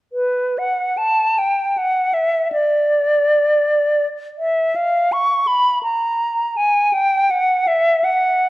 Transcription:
0.13 B4
0.58 F#5
0.97 A5
1.38 G5
1.78 F#5
2.14 E5
2.53 D5
4.38 E5
4.76 F5
5.12 C#6
5.47 B5
5.83 A#5
6.57 G#5
6.93 G5
7.31 F#5
7.67 E5
8.04 F#5

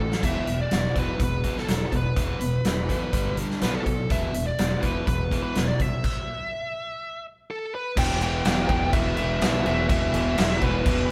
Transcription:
Already playing: A4
0.00 A1 A2 E3
0.12 snare
0.23 E1 E2 B2 E3 E5, kick, closed hi-hat, crash
0.47 E1 E2 B2, closed hi-hat
0.62 D5
0.71 E1 E2 B2, snare, closed hi-hat
0.96 E1 E2 B2 E3 B4, kick, closed hi-hat
1.20 E1 E2 B2, kick, closed hi-hat
1.24 B4
1.44 E2 B2 E3, kick, closed hi-hat
1.57 A4, snare
1.68 E1 E2 B2, snare, closed hi-hat
1.86 A4
1.92 E1 E2 B2, kick, closed hi-hat
1.97 B4
2.16 E1 E2 B2 E3, kick, closed hi-hat
2.41 E1 E2 B2, closed hi-hat
2.65 E1 E2 B2, snare, closed hi-hat
2.89 E2 B2 E3, kick, closed hi-hat
3.13 G1 G2 D3 G3, kick, closed hi-hat
3.37 G2 D3 G3, closed hi-hat
3.50 snare
3.61 B1 B2 F#3 B3 B4, snare, closed hi-hat
3.75 A4
3.86 B1 B2 F#3, kick, closed hi-hat
4.10 E1 E2 B2 E3 E5, kick, closed hi-hat
4.34 E1 E2 B2, closed hi-hat
4.47 D5
4.58 E1 E2 B2, snare, closed hi-hat
4.80 E1 E2 B2 E3 B4, kick, closed hi-hat
5.07 E1 E2 B2 B4, kick, closed hi-hat
5.31 E2 B2 E3, kick, closed hi-hat
5.43 B4
5.55 E1 E2 B2, snare, closed hi-hat
5.67 D5
5.80 C2 E2 B2 E5, kick, closed hi-hat
6.04 kick, crash
7.51 A4
7.75 B4
7.96 E1 E2 B2 E3 G5, kick, crash
8.20 E2 B2 E3 G5, crash
8.45 E1 E2 B2 E3, snare, crash
8.69 E1 E2 B2 E3, kick, crash
8.93 E1 E2 B2 E3 E5, kick, crash
9.16 E2 B2 E3 E5, crash
9.41 B1 E2 B2 E3, snare, crash
9.65 E1 E2 B2 E3, crash
9.89 E1 E2 B2 E3 E5, kick, crash
10.13 E1 E2 B2 E3, crash
10.38 E1 E2 B2 E3, snare, crash
10.62 E1 E2 B2 E3 B4, kick, crash
10.85 E1 E2 B2 E3, kick, crash

